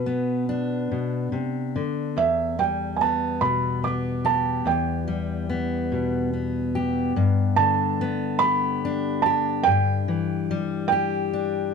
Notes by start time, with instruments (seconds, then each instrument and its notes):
Already playing: steel-string acoustic guitar B2, felt piano B4
0.06 steel-string acoustic guitar B3
0.49 steel-string acoustic guitar D4
0.92 steel-string acoustic guitar B2
1.32 steel-string acoustic guitar C3
1.76 steel-string acoustic guitar D3
2.17 steel-string acoustic guitar E2, felt piano E5
2.59 steel-string acoustic guitar G3, felt piano G5
2.96 felt piano G#5
3.01 steel-string acoustic guitar B3, felt piano A5
3.41 steel-string acoustic guitar B2, felt piano B5
3.84 steel-string acoustic guitar B3, felt piano D6
4.25 steel-string acoustic guitar G4, felt piano A5
4.65 steel-string acoustic guitar E2, felt piano G5
5.08 steel-string acoustic guitar G3
5.49 steel-string acoustic guitar B3
5.92 steel-string acoustic guitar B2
6.33 steel-string acoustic guitar B3
6.75 steel-string acoustic guitar G4
7.16 steel-string acoustic guitar G2
7.56 steel-string acoustic guitar D3, felt piano A5
8.01 steel-string acoustic guitar B3
8.39 steel-string acoustic guitar G4, felt piano B5
8.85 steel-string acoustic guitar D4
9.22 steel-string acoustic guitar G4, felt piano A5
9.63 steel-string acoustic guitar G2, felt piano G5
10.08 steel-string acoustic guitar E3
10.51 steel-string acoustic guitar G3
10.88 felt piano G5
10.92 steel-string acoustic guitar G4
11.33 steel-string acoustic guitar D4